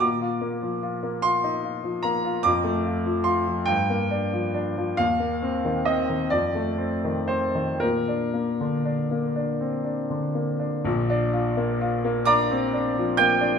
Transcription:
<<
  \new Staff \with { instrumentName = "Grand piano" } { \time 6/8 \key bes \major \tempo 4. = 44 d'''4. c'''4 bes''8 | d'''4 c'''8 g''4 r8 | f''4 ees''8 d''4 c''8 | bes'4. r4. |
r4. <d'' bes'' d'''>4 <g'' g'''>8 | }
  \new Staff \with { instrumentName = "Grand piano" } { \time 6/8 \key bes \major bes,16 f'16 bes16 f16 f'16 bes16 f'16 ees'16 f'16 f16 bes16 f'16 | f,16 a16 f'16 f16 f'16 f16 g,16 bes16 d'16 f16 d'16 f16 | ees,16 bes16 c'16 ees16 c'16 ees16 f,16 a16 c'16 ees16 c'16 ees16 | bes,16 d'16 bes16 d16 d'16 bes16 d'16 c'16 d'16 d16 bes16 d'16 |
<bes,, bes,>16 d'16 f'16 bes16 f'16 bes16 d'16 c'16 d'16 f16 bes16 d'16 | }
>>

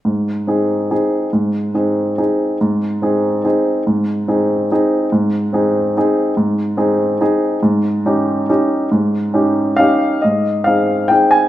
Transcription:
\new Staff \with { instrumentName = "Grand piano" } { \time 3/4 \key aes \major \tempo 4 = 141 << { r2. | r2. | r2. | r2. |
r2. | r2. | r2. | r2 f''4 |
ees''4 f''4 g''8 aes''8 | } \\ { aes,4 <c' ees' aes'>4 <c' ees' aes'>4 | aes,4 <c' ees' aes'>4 <c' ees' aes'>4 | aes,4 <c' ees' aes'>4 <c' ees' aes'>4 | aes,4 <c' ees' aes'>4 <c' ees' aes'>4 |
aes,4 <c' ees' aes'>4 <c' ees' aes'>4 | aes,4 <c' ees' aes'>4 <c' ees' aes'>4 | aes,4 <des' ees' g'>4 <des' ees' g'>4 | aes,4 <des' ees' g'>4 <des' ees' g'>4 |
aes,4 <c' ees' aes'>4 <c' ees' aes'>4 | } >> }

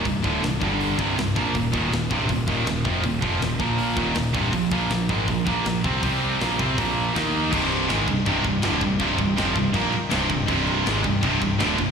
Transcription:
<<
  \new Staff \with { instrumentName = "Analog synth pad" } { \clef bass \time 4/4 \key c \minor \tempo 4 = 161 r1 | r1 | r1 | r1 |
r1 | <c ees g ees' g'>1~ | <c ees g ees' g'>1~ | <c ees g ees' g'>1 | }
  \new Staff \with { instrumentName = "Distorted electric guitar" } { \clef bass \time 4/4 \key c \minor <c, g,>8 <d, a, d>8 <c, g,>8 <g, d g>4 <c, g, c>8 <c, g,>8 <bes, f bes>8 | <ees, bes,>8 <ees, bes, ees>8 <ees, bes,>8 <c, g, c>8 <ees, bes,>8 <ees, bes, ees>8 <ees, bes,>8 <f, c f>8 | <ees, bes,>8 <f, c f>8 <ees, bes,>8 <bes, f bes>4 <ees, bes, ees>8 <ees, bes,>8 <c, g, c>8 | <bes, f>8 <bes, f bes>8 <bes, f>8 <aes, ees aes>8 <bes, f>8 <bes, f bes>8 <bes, f>8 <c g c'>8 |
<c g c'>4 <bes, f bes>8 <c g c'>8 <bes, f bes>4 <ees bes ees'>4 | <c, g, c>4 <aes, ees aes>8 <c, g,>8 <c, g, c>8 <c, g,>8 <d, a, d>8 <c, g,>8 | <c, g, c>8 <c, g,>8 <f, c f>8 <c, g,>8 <bes, f bes>8 r8 <c, g, c>8 <c, g,>8 | <c, g, c>4 <aes, ees aes>8 <c, g,>8 <c, g, c>8 <c, g,>8 <d, a, d>8 <c, g,>8 | }
  \new Staff \with { instrumentName = "Distorted electric guitar" } { \clef bass \time 4/4 \key c \minor <c, g,>8 <d, a, d>8 <c, g,>8 <g, d g>4 <c, g, c>8 <c, g,>8 <bes, f bes>8 | <ees, bes,>8 <ees, bes, ees>8 <ees, bes,>8 <c, g, c>8 <ees, bes,>8 <ees, bes, ees>8 <ees, bes,>8 <f, c f>8 | <ees, bes,>8 <f, c f>8 <ees, bes,>8 <bes, f bes>4 <ees, bes, ees>8 <ees, bes,>8 <c, g, c>8 | <bes, f>8 <bes, f bes>8 <bes, f>8 <aes, ees aes>8 <bes, f>8 <bes, f bes>8 <bes, f>8 <c g c'>8 |
<c g c'>4 <bes, f bes>8 <c g c'>8 <bes, f bes>4 <ees bes ees'>4 | <c, g, c>4 <aes, ees aes>8 <c, g,>8 <c, g, c>8 <c, g,>8 <d, a, d>8 <c, g,>8 | <c, g, c>8 <c, g,>8 <f, c f>8 <c, g,>8 <bes, f bes>8 r8 <c, g, c>8 <c, g,>8 | <c, g, c>4 <aes, ees aes>8 <c, g,>8 <c, g, c>8 <c, g,>8 <d, a, d>8 <c, g,>8 | }
  \new Staff \with { instrumentName = "Distorted electric guitar" } { \clef bass \time 4/4 \key c \minor r1 | r1 | r1 | r1 |
r1 | <c, g, c>4 <aes, ees aes>8 <c, g,>8 <c, g, c>8 <c, g,>8 <d, a, d>8 <c, g,>8 | <c, g, c>8 <c, g,>8 <f, c f>8 <c, g,>8 <bes, f bes>8 r8 <c, g, c>8 <c, g,>8 | <c, g, c>4 <aes, ees aes>8 <c, g,>8 <c, g, c>8 <c, g,>8 <d, a, d>8 <c, g,>8 | }
  \new Staff \with { instrumentName = "Picked electric bass" } { \clef bass \time 4/4 \key c \minor c,,8 d,,8 c,,8 g,,4 c,,8 c,,8 bes,,8 | ees,,8 ees,,8 ees,,8 c,,8 ees,,8 ees,,8 ees,,8 f,,8 | ees,,8 f,,8 ees,,8 bes,,4 ees,,8 ees,,8 c,,8 | bes,,8 bes,,8 bes,,8 aes,,8 bes,,8 bes,,8 bes,,8 c,8 |
c,4 bes,,8 c,8 bes,,4 ees,4 | c,,4 aes,,8 c,,8 c,,8 c,,8 d,,8 c,,8 | c,,8 c,,8 f,,8 c,,8 bes,,8 r8 c,,8 c,,8 | c,,4 aes,,8 c,,8 c,,8 c,,8 d,,8 c,,8 | }
  \new DrumStaff \with { instrumentName = "Drums" } \drummode { \time 4/4 <hho bd>8 bd8 <hho sn>8 bd8 hho8 bd8 <hho sn>8 bd8 | <hho bd>8 bd8 <hho sn>8 bd8 <hho bd>8 bd8 <hho sn>8 bd8 | <hho bd>8 bd8 <hho sn>8 bd8 hho8 bd8 <hho sn>8 bd8 | <hho bd>8 bd8 <hho sn>8 bd8 <hho bd>8 bd8 <hho sn>8 bd8 |
<hho bd>4 <hho sn>8 bd8 <hho bd>4 <hho sn>4 | <cymc bd>8 cymc8 <cymc sn>8 <cymc bd>8 <cymc bd>8 <cymc bd>8 <cymc sn>8 <cymc bd>8 | <cymc bd>8 <cymc bd>8 <cymc sn>8 <cymc bd>8 <cymc bd>8 cymc8 <cymc sn>8 <cymc bd>8 | <cymc bd>8 cymc8 <cymc sn>8 <cymc bd>8 <cymc bd>8 <cymc bd>8 <cymc sn>8 <cymc bd>8 | }
>>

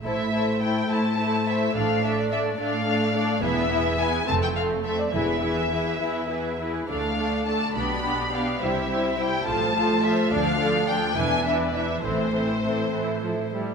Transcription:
<<
  \new Staff \with { instrumentName = "Violin section" } { \time 6/8 \key a \minor \tempo 4. = 70 e''4 g''8 a''4 e''8 | f''8 e''16 d''16 e''8 f''4. | e''4 gis''8 a''16 g''16 f''8 e''16 d''16 | e''2~ e''8 r8 |
f''4 a''8 b''4 f''8 | e''4 g''8 a''4 e''8 | f''4 g''8 gis''8 e''16 d''16 e''8 | c''2~ c''8 r8 | }
  \new Staff \with { instrumentName = "Violin section" } { \time 6/8 \key a \minor <a' c''>8 <a' c''>8 <a' c''>8 <a' c''>8 <a' c''>8 <a' c''>8 | <a' d''>8 <a' d''>8 <a' d''>8 <a' d''>8 <a' d''>8 <a' d''>8 | <gis' b'>8 <gis' b'>8 <gis' b'>8 a'8 a'8 a'8 | <gis' b'>8 <gis' b'>8 <gis' b'>8 <gis' b'>8 <gis' b'>8 <gis' b'>8 |
<a' d''>8 <a' d''>8 <a' d''>8 <g' d''>8 <g' d''>8 <g' d''>8 | <g' c''>8 <g' c''>8 <g' c''>8 <a' c''>8 <a' c''>8 <a' c''>8 | <a' d''>8 <a' d''>8 <a' d''>8 <e' b'>8 <e' b'>8 <e' b'>8 | <e' a'>8 <e' a'>8 <e' a'>8 <e' a'>8 <e' a'>8 <e' a'>8 | }
  \new Staff \with { instrumentName = "Viola section" } { \time 6/8 \key a \minor <a e'>8 <a e'>8 <a e'>8 <a e'>8 <a e'>8 <a e'>8 | <a d'>8 <a d'>8 <a d'>8 <a d'>8 <a d'>8 <a d'>8 | <b e'>8 <b e'>8 <b e'>8 <a c'>8 <a c'>8 <a c'>8 | <e e'>8 <e e'>8 <e e'>8 <e e'>8 <e e'>8 <e e'>8 |
<a d'>8 <a d'>8 <a d'>8 <b d'>8 <b d'>8 <b d'>8 | <g e'>8 <g e'>8 <g e'>8 <f f'>8 <f f'>8 <f f'>8 | <f d'>8 <f d'>8 <f d'>8 <e d'>8 <e d'>8 <e d'>8 | <e c'>8 <e c'>8 <e c'>8 e8 f8 g8 | }
  \new Staff \with { instrumentName = "Cello section" } { \clef bass \time 6/8 \key a \minor a,4. a,4. | a,4. a,4. | e,4. f,4. | e,4. e,4. |
d,4. b,4. | c4. a,4. | d,4. e,4. | a,4. a,4. | }
  \new Staff \with { instrumentName = "Double bass section" } { \clef bass \time 6/8 \key a \minor a,,4 r2 | a,,4 r2 | e,,4 r8 f,,4 r8 | e,,4 r2 |
d,4 r8 b,,4 r8 | c,4 r8 a,,4 r8 | d,4 r8 e,,4 r8 | a,,4 r2 | }
>>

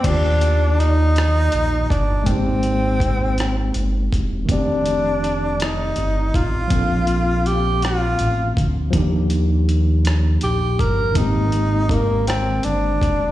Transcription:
<<
  \new Staff \with { instrumentName = "Clean electric guitar" } { \time 6/8 \key ees \lydian \tempo 4. = 54 d''16 r2 r8. | r2. | r2. | r2. |
r2. | r2. | }
  \new Staff \with { instrumentName = "Tenor saxophone" } { \time 6/8 \key ees \lydian d'4 ees'4. d'8 | c'2~ c'8 r8 | d'4. ees'4 f'8~ | f'4 g'8 f'4 r8 |
r2 g'8 bes'8 | ees'4 bes8 c'8 d'4 | }
  \new Staff \with { instrumentName = "Tine electric piano" } { \time 6/8 \key ees \lydian <ees bes f' g' d''>2. | <aes bes c' ees' g'>2. | <ees a c' g' d''>2. | <f bes c' d' a'>2. |
<f bes d' ees' g'>2. | <ees aes bes c' g'>2. | }
  \new Staff \with { instrumentName = "Analog synth bass" } { \clef bass \time 6/8 \key ees \lydian ees,2 bes,,8 g,,8 | aes,,2 g,,8 e,,8 | f,,2 g,,8 a,,8 | bes,,2 a,,8 d,8 |
ees,2 bes,,8 g,,8 | aes,,2 g,,8 e,,8 | }
  \new DrumStaff \with { instrumentName = "Drums" } \drummode { \time 6/8 <cymc hh bd>8 hh8 hh8 <hh ss>8 hh8 <hh bd>8 | <hh bd>8 hh8 <hh bd>8 <hh ss>8 hh8 <hh bd>8 | <hh bd>8 hh8 hh8 <hh ss>8 hh8 <hh bd>8 | <hh bd>8 hh8 hh8 <hh ss>8 hh8 <hh bd>8 |
<hh bd>8 hh8 hh8 <hh ss>8 hh8 <hh bd>8 | <hh bd>8 hh8 <hh bd>8 <hh ss>8 hh8 <hh bd>8 | }
>>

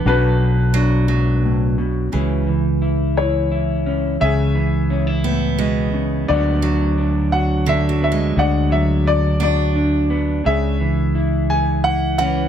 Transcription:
<<
  \new Staff \with { instrumentName = "Grand piano" } { \time 6/8 \key cis \phrygian \tempo 4. = 58 << { b'2~ b'8 r8 | r4. cis''4. | e''2 r4 | d''4. fis''8 e''8 e''8 |
fis''8 e''8 d''8 d''4 r8 | e''4. gis''8 fis''8 fis''8 | } \\ { <d' fis'>2~ <d' fis'>8 r8 | r4. e'4. | gis'2 r4 | fis'4. r4. |
d''4. r4. | gis'4. r4. | } >> }
  \new Staff \with { instrumentName = "Clean electric guitar" } { \time 6/8 \key cis \phrygian << { a'4 d'2 | gis'4 e'8 gis'8 e'8 cis'8 | gis'4 cis'16 e'4.~ e'16 | <fis b d' fis'>4 d'8 fis'8 d'8 b8 |
fis'4 d'8 fis'8 d'8 b8 | gis'4 e'8 gis'8 e'8 cis'8 | } \\ { b,4. gis,8 a,8 b,8 | cis8 e2~ e8 | cis8 e4 a,8 b,8 cis8 | d8 fis2~ fis8 |
d8 fis2~ fis8 | cis8 e2~ e8 | } >> }
  \new Staff \with { instrumentName = "Steel-string acoustic guitar" } { \clef bass \time 6/8 \key cis \phrygian b8 r8 fis8 fis4. | e2~ e8 r8 | r4. b8 gis4~ | gis8 fis4. d16 fis16 gis8~ |
gis4. d'4.~ | d'8 r2 e8 | }
  \new Staff \with { instrumentName = "Fretless electric bass" } { \clef bass \time 6/8 \key cis \phrygian b,,2. | cis,2. | cis,2. | d,2. |
d,2. | cis,2. | }
>>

